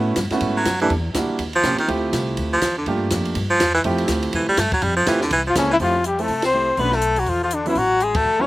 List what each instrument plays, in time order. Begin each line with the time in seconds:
Already playing: upright bass A2, grand piano A3 B3 C#4 E4 F#4
0.16 upright bass G2, kick, snare, hi-hat pedal, ride
0.30 grand piano A3 B3 C#4 E4 F#4, muted upright bass stroke, snare, ride
0.40 upright bass G#2, kick, ride
0.57 baritone saxophone F#3
0.65 upright bass F#2, kick, snare, hi-hat pedal, ride
0.80 baritone saxophone E3, grand piano G3 A#3 D4 E4 A4, ride
0.90 upright bass E2, kick, ride
1.14 upright bass D2, grand piano G3 A#3 D4 E4 F#4, kick, snare, hi-hat pedal, ride
1.29 muted upright bass stroke
1.39 upright bass D#2, kick, ride
1.53 baritone saxophone F3, ride
1.63 upright bass C2, grand piano A#3 C4 C#4 F4 G4, kick, snare, hi-hat pedal, ride
1.78 baritone saxophone D#3, muted upright bass stroke, ride
1.88 upright bass D2, grand piano A3 C4 E4 F4 G4, kick, ride
2.13 upright bass C2, kick, snare, hi-hat pedal, ride
2.37 upright bass D2, kick, ride
2.53 baritone saxophone F3
2.61 upright bass E2, kick, snare, hi-hat pedal, ride
2.78 baritone saxophone D3
2.86 upright bass G2, grand piano A3 A#3 D4 F4 G4, kick, ride
3.10 upright bass F2, kick, snare, hi-hat pedal, ride
3.25 ride
3.35 upright bass G2, kick, ride
3.50 baritone saxophone F3
3.60 upright bass E2, kick, snare, hi-hat pedal, ride
3.74 baritone saxophone E3, snare
3.84 upright bass F2, grand piano A3 C4 E4 F4 G4, kick, ride
3.98 ride
4.08 upright bass D2, kick, snare, hi-hat pedal, ride
4.22 ride
4.33 upright bass E2, baritone saxophone E3, kick, ride
4.48 baritone saxophone G3, muted upright bass stroke
4.57 upright bass G2, baritone saxophone A3, kick, snare, hi-hat pedal, ride
4.72 baritone saxophone F#3, muted upright bass stroke, kick, ride
4.82 upright bass F2, baritone saxophone G3, kick, ride
4.96 baritone saxophone F3
5.06 upright bass E2, baritone saxophone E3, grand piano A3 C4 E4 F4 G4, kick, snare, hi-hat pedal, ride
5.21 baritone saxophone D3, snare
5.31 upright bass C2, baritone saxophone E3, kick, ride
5.47 baritone saxophone F3, flugelhorn F4
5.55 upright bass C#2, baritone saxophone C#3, grand piano A#3 C4 C#4 E4 A4, flugelhorn C#4, kick, snare, hi-hat pedal, ride
5.71 baritone saxophone E3, flugelhorn E4
5.80 upright bass F2, baritone saxophone F3, grand piano A3 C4 E4 G4, flugelhorn F4, kick, open hi-hat
6.04 baritone saxophone G3, flugelhorn G4, closed hi-hat
6.18 grand piano A3 C4 E4 A4, baritone saxophone A3, flugelhorn A4, open hi-hat
6.28 upright bass C2, kick, open hi-hat
6.42 baritone saxophone C4, snare, ride
6.46 flugelhorn C5
6.54 grand piano A3 C4 E4 G4
6.77 upright bass B1, grand piano A3 C#4 D4 F#4, baritone saxophone B3, kick, open hi-hat
6.81 flugelhorn B4
6.92 baritone saxophone A3, flugelhorn A4, snare
7.01 closed hi-hat
7.16 baritone saxophone F#3, flugelhorn F#4, open hi-hat
7.26 upright bass E2, baritone saxophone F3, flugelhorn F4, kick, open hi-hat
7.43 baritone saxophone F3, flugelhorn F4
7.51 baritone saxophone D3, flugelhorn D4, closed hi-hat
7.66 baritone saxophone E3, grand piano F#3 B3 C#4 E4, flugelhorn E4, open hi-hat
7.75 upright bass A1, baritone saxophone F#3, flugelhorn F#4, kick, open hi-hat
8.00 baritone saxophone G#3, flugelhorn G#4, closed hi-hat
8.14 baritone saxophone A3, flugelhorn A4, kick, ride
8.25 upright bass E2
8.39 grand piano F#3 B3 C#4 E4, baritone saxophone C#4, flugelhorn C#5